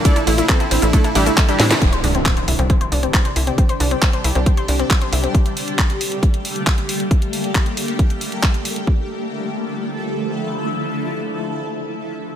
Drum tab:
RD |x-x-x-x-x-x-x-x-|----------------|----------------|----------------|
HH |xxoxxxoxxxoxxxox|xxoxxxoxxxoxxxox|xxoxxxoxxxoxxxox|xxoxxxoxxxoxxxox|
SH |xx-xxx-xxx-xxx-x|----------------|----------------|----------------|
CP |----x-------x---|----x-------x---|----x-------x---|----x-------x---|
SD |--------------oo|----------------|----------------|----------------|
BD |o---o---o---o---|o---o---o---o---|o---o---o---o---|o---o---o---o---|

RD |----------------|----------------|----------------|
HH |xxoxxxoxxxoxxxox|----------------|----------------|
SH |----------------|----------------|----------------|
CP |----x-------x---|----------------|----------------|
SD |----------------|----------------|----------------|
BD |o---o---o---o---|o---------------|----------------|